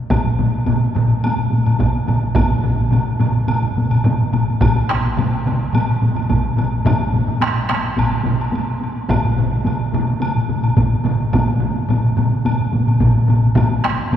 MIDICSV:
0, 0, Header, 1, 3, 480
1, 0, Start_track
1, 0, Tempo, 560748
1, 92, Time_signature, 4, 2, 24, 8
1, 12126, End_track
2, 0, Start_track
2, 0, Title_t, "Taiko and cinematic ensemble drums"
2, 87, Note_on_c, 9, 47, 73
2, 89, Note_on_c, 9, 48, 70
2, 90, Note_on_c, 9, 41, 100
2, 93, Note_on_c, 9, 45, 73
2, 172, Note_off_c, 9, 47, 0
2, 174, Note_off_c, 9, 48, 0
2, 176, Note_off_c, 9, 41, 0
2, 178, Note_off_c, 9, 45, 0
2, 210, Note_on_c, 9, 48, 46
2, 218, Note_on_c, 9, 47, 62
2, 231, Note_on_c, 9, 45, 62
2, 296, Note_off_c, 9, 48, 0
2, 304, Note_off_c, 9, 47, 0
2, 317, Note_off_c, 9, 45, 0
2, 334, Note_on_c, 9, 47, 88
2, 335, Note_on_c, 9, 45, 94
2, 335, Note_on_c, 9, 48, 58
2, 419, Note_off_c, 9, 47, 0
2, 421, Note_off_c, 9, 45, 0
2, 421, Note_off_c, 9, 48, 0
2, 458, Note_on_c, 9, 48, 24
2, 544, Note_off_c, 9, 48, 0
2, 568, Note_on_c, 9, 48, 70
2, 575, Note_on_c, 9, 47, 90
2, 585, Note_on_c, 9, 45, 89
2, 653, Note_off_c, 9, 48, 0
2, 661, Note_off_c, 9, 47, 0
2, 671, Note_off_c, 9, 45, 0
2, 685, Note_on_c, 9, 48, 22
2, 770, Note_off_c, 9, 48, 0
2, 816, Note_on_c, 9, 48, 54
2, 822, Note_on_c, 9, 45, 110
2, 823, Note_on_c, 9, 47, 93
2, 901, Note_off_c, 9, 48, 0
2, 908, Note_off_c, 9, 45, 0
2, 908, Note_off_c, 9, 47, 0
2, 936, Note_on_c, 9, 48, 22
2, 1022, Note_off_c, 9, 48, 0
2, 1062, Note_on_c, 9, 48, 67
2, 1067, Note_on_c, 9, 47, 69
2, 1072, Note_on_c, 9, 45, 73
2, 1147, Note_off_c, 9, 48, 0
2, 1153, Note_off_c, 9, 47, 0
2, 1157, Note_off_c, 9, 45, 0
2, 1171, Note_on_c, 9, 48, 24
2, 1178, Note_on_c, 9, 47, 63
2, 1181, Note_on_c, 9, 45, 68
2, 1256, Note_off_c, 9, 48, 0
2, 1263, Note_off_c, 9, 47, 0
2, 1267, Note_off_c, 9, 45, 0
2, 1284, Note_on_c, 9, 48, 56
2, 1301, Note_on_c, 9, 47, 61
2, 1307, Note_on_c, 9, 45, 66
2, 1370, Note_off_c, 9, 48, 0
2, 1387, Note_off_c, 9, 47, 0
2, 1393, Note_off_c, 9, 45, 0
2, 1412, Note_on_c, 9, 48, 25
2, 1425, Note_on_c, 9, 45, 71
2, 1428, Note_on_c, 9, 47, 75
2, 1497, Note_off_c, 9, 48, 0
2, 1511, Note_off_c, 9, 45, 0
2, 1513, Note_off_c, 9, 47, 0
2, 1533, Note_on_c, 9, 48, 66
2, 1537, Note_on_c, 9, 47, 87
2, 1538, Note_on_c, 9, 41, 80
2, 1550, Note_on_c, 9, 45, 107
2, 1619, Note_off_c, 9, 48, 0
2, 1623, Note_off_c, 9, 47, 0
2, 1624, Note_off_c, 9, 41, 0
2, 1635, Note_off_c, 9, 45, 0
2, 1658, Note_on_c, 9, 48, 22
2, 1744, Note_off_c, 9, 48, 0
2, 1776, Note_on_c, 9, 47, 84
2, 1777, Note_on_c, 9, 48, 55
2, 1781, Note_on_c, 9, 45, 93
2, 1862, Note_off_c, 9, 47, 0
2, 1863, Note_off_c, 9, 48, 0
2, 1866, Note_off_c, 9, 45, 0
2, 1905, Note_on_c, 9, 48, 23
2, 1990, Note_off_c, 9, 48, 0
2, 2012, Note_on_c, 9, 41, 104
2, 2019, Note_on_c, 9, 47, 65
2, 2020, Note_on_c, 9, 48, 73
2, 2023, Note_on_c, 9, 45, 74
2, 2098, Note_off_c, 9, 41, 0
2, 2105, Note_off_c, 9, 47, 0
2, 2106, Note_off_c, 9, 48, 0
2, 2109, Note_off_c, 9, 45, 0
2, 2138, Note_on_c, 9, 45, 62
2, 2142, Note_on_c, 9, 48, 47
2, 2148, Note_on_c, 9, 47, 67
2, 2223, Note_off_c, 9, 45, 0
2, 2228, Note_off_c, 9, 48, 0
2, 2233, Note_off_c, 9, 47, 0
2, 2254, Note_on_c, 9, 45, 92
2, 2260, Note_on_c, 9, 48, 54
2, 2262, Note_on_c, 9, 47, 89
2, 2340, Note_off_c, 9, 45, 0
2, 2345, Note_off_c, 9, 48, 0
2, 2348, Note_off_c, 9, 47, 0
2, 2382, Note_on_c, 9, 48, 20
2, 2468, Note_off_c, 9, 48, 0
2, 2489, Note_on_c, 9, 45, 98
2, 2500, Note_on_c, 9, 48, 63
2, 2504, Note_on_c, 9, 47, 87
2, 2575, Note_off_c, 9, 45, 0
2, 2585, Note_off_c, 9, 48, 0
2, 2590, Note_off_c, 9, 47, 0
2, 2619, Note_on_c, 9, 48, 21
2, 2704, Note_off_c, 9, 48, 0
2, 2733, Note_on_c, 9, 45, 99
2, 2736, Note_on_c, 9, 48, 58
2, 2744, Note_on_c, 9, 47, 103
2, 2819, Note_off_c, 9, 45, 0
2, 2821, Note_off_c, 9, 48, 0
2, 2829, Note_off_c, 9, 47, 0
2, 2864, Note_on_c, 9, 48, 23
2, 2949, Note_off_c, 9, 48, 0
2, 2977, Note_on_c, 9, 48, 68
2, 2984, Note_on_c, 9, 45, 76
2, 2989, Note_on_c, 9, 47, 68
2, 3063, Note_off_c, 9, 48, 0
2, 3070, Note_off_c, 9, 45, 0
2, 3075, Note_off_c, 9, 47, 0
2, 3102, Note_on_c, 9, 45, 73
2, 3105, Note_on_c, 9, 47, 68
2, 3108, Note_on_c, 9, 48, 23
2, 3188, Note_off_c, 9, 45, 0
2, 3191, Note_off_c, 9, 47, 0
2, 3193, Note_off_c, 9, 48, 0
2, 3225, Note_on_c, 9, 45, 65
2, 3225, Note_on_c, 9, 47, 67
2, 3232, Note_on_c, 9, 48, 58
2, 3311, Note_off_c, 9, 45, 0
2, 3311, Note_off_c, 9, 47, 0
2, 3317, Note_off_c, 9, 48, 0
2, 3340, Note_on_c, 9, 45, 66
2, 3347, Note_on_c, 9, 47, 71
2, 3350, Note_on_c, 9, 48, 22
2, 3425, Note_off_c, 9, 45, 0
2, 3432, Note_off_c, 9, 47, 0
2, 3435, Note_off_c, 9, 48, 0
2, 3458, Note_on_c, 9, 45, 97
2, 3462, Note_on_c, 9, 47, 90
2, 3465, Note_on_c, 9, 41, 71
2, 3472, Note_on_c, 9, 48, 65
2, 3544, Note_off_c, 9, 45, 0
2, 3547, Note_off_c, 9, 47, 0
2, 3550, Note_off_c, 9, 41, 0
2, 3558, Note_off_c, 9, 48, 0
2, 3599, Note_on_c, 9, 48, 21
2, 3685, Note_off_c, 9, 48, 0
2, 3704, Note_on_c, 9, 45, 105
2, 3709, Note_on_c, 9, 47, 83
2, 3714, Note_on_c, 9, 48, 55
2, 3789, Note_off_c, 9, 45, 0
2, 3795, Note_off_c, 9, 47, 0
2, 3799, Note_off_c, 9, 48, 0
2, 3835, Note_on_c, 9, 48, 23
2, 3921, Note_off_c, 9, 48, 0
2, 3943, Note_on_c, 9, 47, 97
2, 3945, Note_on_c, 9, 41, 104
2, 3947, Note_on_c, 9, 48, 70
2, 3952, Note_on_c, 9, 45, 111
2, 4029, Note_off_c, 9, 47, 0
2, 4030, Note_off_c, 9, 41, 0
2, 4033, Note_off_c, 9, 48, 0
2, 4038, Note_off_c, 9, 45, 0
2, 4075, Note_on_c, 9, 48, 47
2, 4161, Note_off_c, 9, 48, 0
2, 4187, Note_on_c, 9, 37, 67
2, 4194, Note_off_c, 9, 37, 0
2, 4194, Note_on_c, 9, 37, 76
2, 4279, Note_off_c, 9, 37, 0
2, 4315, Note_on_c, 9, 48, 21
2, 4401, Note_off_c, 9, 48, 0
2, 4423, Note_on_c, 9, 47, 101
2, 4435, Note_on_c, 9, 45, 95
2, 4440, Note_on_c, 9, 48, 67
2, 4509, Note_off_c, 9, 47, 0
2, 4520, Note_off_c, 9, 45, 0
2, 4526, Note_off_c, 9, 48, 0
2, 4562, Note_on_c, 9, 48, 24
2, 4648, Note_off_c, 9, 48, 0
2, 4670, Note_on_c, 9, 47, 97
2, 4675, Note_on_c, 9, 45, 100
2, 4679, Note_on_c, 9, 48, 59
2, 4755, Note_off_c, 9, 47, 0
2, 4761, Note_off_c, 9, 45, 0
2, 4765, Note_off_c, 9, 48, 0
2, 4800, Note_on_c, 9, 48, 23
2, 4886, Note_off_c, 9, 48, 0
2, 4904, Note_on_c, 9, 47, 97
2, 4913, Note_on_c, 9, 45, 105
2, 4920, Note_on_c, 9, 48, 75
2, 4990, Note_off_c, 9, 47, 0
2, 4998, Note_off_c, 9, 45, 0
2, 5005, Note_off_c, 9, 48, 0
2, 5037, Note_on_c, 9, 48, 25
2, 5122, Note_off_c, 9, 48, 0
2, 5150, Note_on_c, 9, 47, 59
2, 5152, Note_on_c, 9, 48, 55
2, 5158, Note_on_c, 9, 45, 66
2, 5235, Note_off_c, 9, 47, 0
2, 5238, Note_off_c, 9, 48, 0
2, 5244, Note_off_c, 9, 45, 0
2, 5264, Note_on_c, 9, 47, 78
2, 5268, Note_on_c, 9, 45, 67
2, 5273, Note_on_c, 9, 48, 22
2, 5350, Note_off_c, 9, 47, 0
2, 5354, Note_off_c, 9, 45, 0
2, 5359, Note_off_c, 9, 48, 0
2, 5385, Note_on_c, 9, 45, 106
2, 5388, Note_on_c, 9, 47, 95
2, 5389, Note_on_c, 9, 48, 61
2, 5392, Note_on_c, 9, 41, 70
2, 5471, Note_off_c, 9, 45, 0
2, 5474, Note_off_c, 9, 47, 0
2, 5475, Note_off_c, 9, 48, 0
2, 5477, Note_off_c, 9, 41, 0
2, 5515, Note_on_c, 9, 48, 23
2, 5600, Note_off_c, 9, 48, 0
2, 5624, Note_on_c, 9, 45, 98
2, 5629, Note_on_c, 9, 48, 53
2, 5634, Note_on_c, 9, 47, 90
2, 5709, Note_off_c, 9, 45, 0
2, 5715, Note_off_c, 9, 48, 0
2, 5719, Note_off_c, 9, 47, 0
2, 5748, Note_on_c, 9, 48, 24
2, 5833, Note_off_c, 9, 48, 0
2, 5861, Note_on_c, 9, 45, 102
2, 5865, Note_on_c, 9, 48, 68
2, 5870, Note_on_c, 9, 41, 105
2, 5875, Note_on_c, 9, 47, 103
2, 5947, Note_off_c, 9, 45, 0
2, 5951, Note_off_c, 9, 48, 0
2, 5956, Note_off_c, 9, 41, 0
2, 5960, Note_off_c, 9, 47, 0
2, 5990, Note_on_c, 9, 48, 53
2, 6075, Note_off_c, 9, 48, 0
2, 6106, Note_on_c, 9, 48, 54
2, 6109, Note_on_c, 9, 45, 67
2, 6116, Note_on_c, 9, 47, 63
2, 6192, Note_off_c, 9, 48, 0
2, 6195, Note_off_c, 9, 45, 0
2, 6202, Note_off_c, 9, 47, 0
2, 6222, Note_on_c, 9, 48, 21
2, 6229, Note_on_c, 9, 45, 73
2, 6231, Note_on_c, 9, 47, 74
2, 6307, Note_off_c, 9, 48, 0
2, 6315, Note_off_c, 9, 45, 0
2, 6317, Note_off_c, 9, 47, 0
2, 6339, Note_on_c, 9, 48, 65
2, 6352, Note_on_c, 9, 37, 74
2, 6353, Note_off_c, 9, 37, 0
2, 6353, Note_on_c, 9, 37, 77
2, 6425, Note_off_c, 9, 48, 0
2, 6439, Note_off_c, 9, 37, 0
2, 6470, Note_on_c, 9, 48, 23
2, 6556, Note_off_c, 9, 48, 0
2, 6586, Note_on_c, 9, 48, 55
2, 6588, Note_on_c, 9, 37, 72
2, 6671, Note_off_c, 9, 48, 0
2, 6673, Note_off_c, 9, 37, 0
2, 6706, Note_on_c, 9, 48, 23
2, 6792, Note_off_c, 9, 48, 0
2, 6820, Note_on_c, 9, 48, 67
2, 6825, Note_on_c, 9, 41, 72
2, 6833, Note_on_c, 9, 45, 74
2, 6834, Note_on_c, 9, 47, 64
2, 6905, Note_off_c, 9, 48, 0
2, 6910, Note_off_c, 9, 41, 0
2, 6918, Note_off_c, 9, 45, 0
2, 6919, Note_off_c, 9, 47, 0
2, 6938, Note_on_c, 9, 48, 22
2, 6949, Note_on_c, 9, 45, 70
2, 6953, Note_on_c, 9, 47, 67
2, 7023, Note_off_c, 9, 48, 0
2, 7035, Note_off_c, 9, 45, 0
2, 7039, Note_off_c, 9, 47, 0
2, 7049, Note_on_c, 9, 48, 58
2, 7063, Note_on_c, 9, 45, 93
2, 7067, Note_on_c, 9, 47, 95
2, 7135, Note_off_c, 9, 48, 0
2, 7148, Note_off_c, 9, 45, 0
2, 7153, Note_off_c, 9, 47, 0
2, 7176, Note_on_c, 9, 48, 21
2, 7261, Note_off_c, 9, 48, 0
2, 7293, Note_on_c, 9, 48, 68
2, 7379, Note_off_c, 9, 48, 0
2, 7423, Note_on_c, 9, 48, 21
2, 7508, Note_off_c, 9, 48, 0
2, 7538, Note_on_c, 9, 48, 53
2, 7624, Note_off_c, 9, 48, 0
2, 7656, Note_on_c, 9, 48, 20
2, 7742, Note_off_c, 9, 48, 0
2, 7782, Note_on_c, 9, 48, 68
2, 7783, Note_on_c, 9, 41, 119
2, 7787, Note_on_c, 9, 47, 65
2, 7795, Note_on_c, 9, 45, 71
2, 7868, Note_off_c, 9, 41, 0
2, 7868, Note_off_c, 9, 48, 0
2, 7872, Note_off_c, 9, 47, 0
2, 7881, Note_off_c, 9, 45, 0
2, 7903, Note_on_c, 9, 48, 46
2, 7913, Note_on_c, 9, 45, 68
2, 7913, Note_on_c, 9, 47, 74
2, 7988, Note_off_c, 9, 48, 0
2, 7998, Note_off_c, 9, 45, 0
2, 7999, Note_off_c, 9, 47, 0
2, 8018, Note_on_c, 9, 48, 53
2, 8030, Note_on_c, 9, 47, 88
2, 8031, Note_on_c, 9, 45, 98
2, 8104, Note_off_c, 9, 48, 0
2, 8116, Note_off_c, 9, 47, 0
2, 8117, Note_off_c, 9, 45, 0
2, 8150, Note_on_c, 9, 48, 21
2, 8235, Note_off_c, 9, 48, 0
2, 8259, Note_on_c, 9, 48, 64
2, 8268, Note_on_c, 9, 45, 93
2, 8272, Note_on_c, 9, 47, 91
2, 8344, Note_off_c, 9, 48, 0
2, 8354, Note_off_c, 9, 45, 0
2, 8358, Note_off_c, 9, 47, 0
2, 8378, Note_on_c, 9, 48, 21
2, 8463, Note_off_c, 9, 48, 0
2, 8492, Note_on_c, 9, 48, 57
2, 8507, Note_on_c, 9, 45, 99
2, 8511, Note_on_c, 9, 47, 100
2, 8578, Note_off_c, 9, 48, 0
2, 8593, Note_off_c, 9, 45, 0
2, 8596, Note_off_c, 9, 47, 0
2, 8620, Note_on_c, 9, 48, 23
2, 8706, Note_off_c, 9, 48, 0
2, 8731, Note_on_c, 9, 48, 63
2, 8745, Note_on_c, 9, 47, 77
2, 8749, Note_on_c, 9, 45, 74
2, 8817, Note_off_c, 9, 48, 0
2, 8830, Note_off_c, 9, 47, 0
2, 8834, Note_off_c, 9, 45, 0
2, 8854, Note_on_c, 9, 48, 25
2, 8870, Note_on_c, 9, 47, 67
2, 8875, Note_on_c, 9, 45, 70
2, 8939, Note_off_c, 9, 48, 0
2, 8956, Note_off_c, 9, 47, 0
2, 8960, Note_off_c, 9, 45, 0
2, 8978, Note_on_c, 9, 48, 59
2, 8984, Note_on_c, 9, 47, 69
2, 8986, Note_on_c, 9, 45, 69
2, 9063, Note_off_c, 9, 48, 0
2, 9069, Note_off_c, 9, 47, 0
2, 9071, Note_off_c, 9, 45, 0
2, 9104, Note_on_c, 9, 45, 72
2, 9104, Note_on_c, 9, 47, 69
2, 9189, Note_off_c, 9, 45, 0
2, 9190, Note_off_c, 9, 47, 0
2, 9216, Note_on_c, 9, 47, 97
2, 9217, Note_on_c, 9, 48, 70
2, 9222, Note_on_c, 9, 41, 66
2, 9223, Note_on_c, 9, 45, 103
2, 9301, Note_off_c, 9, 47, 0
2, 9303, Note_off_c, 9, 48, 0
2, 9308, Note_off_c, 9, 41, 0
2, 9308, Note_off_c, 9, 45, 0
2, 9343, Note_on_c, 9, 48, 23
2, 9428, Note_off_c, 9, 48, 0
2, 9456, Note_on_c, 9, 47, 98
2, 9458, Note_on_c, 9, 48, 55
2, 9466, Note_on_c, 9, 45, 105
2, 9542, Note_off_c, 9, 47, 0
2, 9543, Note_off_c, 9, 48, 0
2, 9552, Note_off_c, 9, 45, 0
2, 9592, Note_on_c, 9, 48, 24
2, 9678, Note_off_c, 9, 48, 0
2, 9695, Note_on_c, 9, 47, 72
2, 9699, Note_on_c, 9, 41, 83
2, 9708, Note_on_c, 9, 48, 85
2, 9710, Note_on_c, 9, 45, 75
2, 9780, Note_off_c, 9, 47, 0
2, 9785, Note_off_c, 9, 41, 0
2, 9793, Note_off_c, 9, 48, 0
2, 9796, Note_off_c, 9, 45, 0
2, 9814, Note_on_c, 9, 47, 70
2, 9826, Note_on_c, 9, 48, 51
2, 9827, Note_on_c, 9, 45, 65
2, 9900, Note_off_c, 9, 47, 0
2, 9911, Note_off_c, 9, 48, 0
2, 9913, Note_off_c, 9, 45, 0
2, 9930, Note_on_c, 9, 47, 91
2, 9950, Note_on_c, 9, 48, 59
2, 9954, Note_on_c, 9, 45, 93
2, 10016, Note_off_c, 9, 47, 0
2, 10036, Note_off_c, 9, 48, 0
2, 10040, Note_off_c, 9, 45, 0
2, 10081, Note_on_c, 9, 48, 21
2, 10167, Note_off_c, 9, 48, 0
2, 10176, Note_on_c, 9, 47, 89
2, 10188, Note_on_c, 9, 48, 69
2, 10190, Note_on_c, 9, 45, 106
2, 10261, Note_off_c, 9, 47, 0
2, 10273, Note_off_c, 9, 48, 0
2, 10276, Note_off_c, 9, 45, 0
2, 10307, Note_on_c, 9, 48, 24
2, 10392, Note_off_c, 9, 48, 0
2, 10416, Note_on_c, 9, 47, 86
2, 10427, Note_on_c, 9, 48, 62
2, 10433, Note_on_c, 9, 45, 98
2, 10502, Note_off_c, 9, 47, 0
2, 10513, Note_off_c, 9, 48, 0
2, 10518, Note_off_c, 9, 45, 0
2, 10549, Note_on_c, 9, 48, 24
2, 10635, Note_off_c, 9, 48, 0
2, 10659, Note_on_c, 9, 47, 68
2, 10660, Note_on_c, 9, 48, 75
2, 10673, Note_on_c, 9, 45, 69
2, 10745, Note_off_c, 9, 47, 0
2, 10746, Note_off_c, 9, 48, 0
2, 10759, Note_off_c, 9, 45, 0
2, 10774, Note_on_c, 9, 47, 62
2, 10781, Note_on_c, 9, 48, 25
2, 10793, Note_on_c, 9, 45, 74
2, 10860, Note_off_c, 9, 47, 0
2, 10866, Note_off_c, 9, 48, 0
2, 10878, Note_off_c, 9, 45, 0
2, 10891, Note_on_c, 9, 48, 67
2, 10897, Note_on_c, 9, 47, 68
2, 10912, Note_on_c, 9, 45, 65
2, 10976, Note_off_c, 9, 48, 0
2, 10983, Note_off_c, 9, 47, 0
2, 10998, Note_off_c, 9, 45, 0
2, 11011, Note_on_c, 9, 48, 24
2, 11016, Note_on_c, 9, 47, 72
2, 11025, Note_on_c, 9, 45, 75
2, 11096, Note_off_c, 9, 48, 0
2, 11102, Note_off_c, 9, 47, 0
2, 11110, Note_off_c, 9, 45, 0
2, 11130, Note_on_c, 9, 41, 71
2, 11130, Note_on_c, 9, 47, 96
2, 11132, Note_on_c, 9, 48, 71
2, 11138, Note_on_c, 9, 45, 109
2, 11215, Note_off_c, 9, 41, 0
2, 11216, Note_off_c, 9, 47, 0
2, 11218, Note_off_c, 9, 48, 0
2, 11224, Note_off_c, 9, 45, 0
2, 11260, Note_on_c, 9, 48, 21
2, 11345, Note_off_c, 9, 48, 0
2, 11368, Note_on_c, 9, 48, 57
2, 11369, Note_on_c, 9, 47, 81
2, 11383, Note_on_c, 9, 45, 94
2, 11454, Note_off_c, 9, 48, 0
2, 11455, Note_off_c, 9, 47, 0
2, 11469, Note_off_c, 9, 45, 0
2, 11493, Note_on_c, 9, 48, 25
2, 11579, Note_off_c, 9, 48, 0
2, 11600, Note_on_c, 9, 41, 102
2, 11606, Note_on_c, 9, 47, 112
2, 11610, Note_on_c, 9, 48, 77
2, 11614, Note_on_c, 9, 45, 106
2, 11686, Note_off_c, 9, 41, 0
2, 11691, Note_off_c, 9, 47, 0
2, 11695, Note_off_c, 9, 48, 0
2, 11699, Note_off_c, 9, 45, 0
2, 11738, Note_on_c, 9, 48, 53
2, 11824, Note_off_c, 9, 48, 0
2, 11846, Note_on_c, 9, 37, 70
2, 11853, Note_on_c, 9, 48, 56
2, 11855, Note_off_c, 9, 37, 0
2, 11855, Note_on_c, 9, 37, 80
2, 11938, Note_off_c, 9, 48, 0
2, 11941, Note_off_c, 9, 37, 0
2, 11973, Note_on_c, 9, 48, 21
2, 12058, Note_off_c, 9, 48, 0
2, 12087, Note_on_c, 9, 47, 97
2, 12088, Note_on_c, 9, 45, 90
2, 12096, Note_on_c, 9, 48, 69
2, 12126, Note_off_c, 9, 45, 0
2, 12126, Note_off_c, 9, 47, 0
2, 12126, Note_off_c, 9, 48, 0
2, 12126, End_track
3, 0, Start_track
3, 0, Title_t, "Drums"
3, 93, Note_on_c, 9, 76, 56
3, 179, Note_off_c, 9, 76, 0
3, 569, Note_on_c, 9, 76, 43
3, 655, Note_off_c, 9, 76, 0
3, 812, Note_on_c, 9, 76, 37
3, 897, Note_off_c, 9, 76, 0
3, 1061, Note_on_c, 9, 76, 54
3, 1147, Note_off_c, 9, 76, 0
3, 1424, Note_on_c, 9, 76, 41
3, 1510, Note_off_c, 9, 76, 0
3, 1544, Note_on_c, 9, 76, 46
3, 1630, Note_off_c, 9, 76, 0
3, 1784, Note_on_c, 9, 76, 42
3, 1870, Note_off_c, 9, 76, 0
3, 2019, Note_on_c, 9, 76, 61
3, 2104, Note_off_c, 9, 76, 0
3, 2510, Note_on_c, 9, 76, 46
3, 2596, Note_off_c, 9, 76, 0
3, 2746, Note_on_c, 9, 76, 41
3, 2832, Note_off_c, 9, 76, 0
3, 2981, Note_on_c, 9, 76, 62
3, 3067, Note_off_c, 9, 76, 0
3, 3349, Note_on_c, 9, 76, 45
3, 3434, Note_off_c, 9, 76, 0
3, 3463, Note_on_c, 9, 76, 43
3, 3549, Note_off_c, 9, 76, 0
3, 3710, Note_on_c, 9, 76, 43
3, 3796, Note_off_c, 9, 76, 0
3, 3956, Note_on_c, 9, 76, 67
3, 4041, Note_off_c, 9, 76, 0
3, 4439, Note_on_c, 9, 76, 50
3, 4525, Note_off_c, 9, 76, 0
3, 4685, Note_on_c, 9, 76, 40
3, 4770, Note_off_c, 9, 76, 0
3, 4919, Note_on_c, 9, 76, 62
3, 5005, Note_off_c, 9, 76, 0
3, 5277, Note_on_c, 9, 76, 42
3, 5362, Note_off_c, 9, 76, 0
3, 5391, Note_on_c, 9, 76, 40
3, 5477, Note_off_c, 9, 76, 0
3, 5637, Note_on_c, 9, 76, 44
3, 5723, Note_off_c, 9, 76, 0
3, 5880, Note_on_c, 9, 76, 57
3, 5965, Note_off_c, 9, 76, 0
3, 6360, Note_on_c, 9, 76, 44
3, 6446, Note_off_c, 9, 76, 0
3, 6599, Note_on_c, 9, 76, 38
3, 6685, Note_off_c, 9, 76, 0
3, 6839, Note_on_c, 9, 76, 58
3, 6924, Note_off_c, 9, 76, 0
3, 7201, Note_on_c, 9, 76, 44
3, 7287, Note_off_c, 9, 76, 0
3, 7323, Note_on_c, 9, 76, 45
3, 7408, Note_off_c, 9, 76, 0
3, 7564, Note_on_c, 9, 76, 39
3, 7650, Note_off_c, 9, 76, 0
3, 7795, Note_on_c, 9, 76, 64
3, 7881, Note_off_c, 9, 76, 0
3, 8278, Note_on_c, 9, 76, 44
3, 8363, Note_off_c, 9, 76, 0
3, 8516, Note_on_c, 9, 76, 38
3, 8602, Note_off_c, 9, 76, 0
3, 8747, Note_on_c, 9, 76, 53
3, 8833, Note_off_c, 9, 76, 0
3, 9105, Note_on_c, 9, 76, 40
3, 9191, Note_off_c, 9, 76, 0
3, 9225, Note_on_c, 9, 76, 38
3, 9311, Note_off_c, 9, 76, 0
3, 9466, Note_on_c, 9, 76, 40
3, 9551, Note_off_c, 9, 76, 0
3, 9701, Note_on_c, 9, 76, 52
3, 9787, Note_off_c, 9, 76, 0
3, 10188, Note_on_c, 9, 76, 43
3, 10274, Note_off_c, 9, 76, 0
3, 10422, Note_on_c, 9, 76, 38
3, 10508, Note_off_c, 9, 76, 0
3, 10665, Note_on_c, 9, 76, 51
3, 10751, Note_off_c, 9, 76, 0
3, 11028, Note_on_c, 9, 76, 36
3, 11113, Note_off_c, 9, 76, 0
3, 11146, Note_on_c, 9, 76, 39
3, 11232, Note_off_c, 9, 76, 0
3, 11385, Note_on_c, 9, 76, 39
3, 11470, Note_off_c, 9, 76, 0
3, 11620, Note_on_c, 9, 76, 53
3, 11706, Note_off_c, 9, 76, 0
3, 12126, End_track
0, 0, End_of_file